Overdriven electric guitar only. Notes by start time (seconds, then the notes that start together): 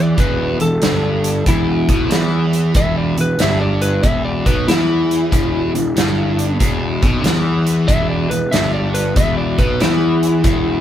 Already playing: E3
0.17 E2
0.59 E2
0.82 G2
1.47 E2
1.89 B2
2.10 E3
2.75 E2
3.18 E2
3.40 G2
4.03 E2
4.45 B2
4.68 E3
5.32 E2
5.75 E2
5.96 G2
6.59 E2
7.02 B2
7.24 E3
7.89 E2
8.31 E2
8.53 G2
9.16 E2
9.59 B2
9.80 E3
10.44 E2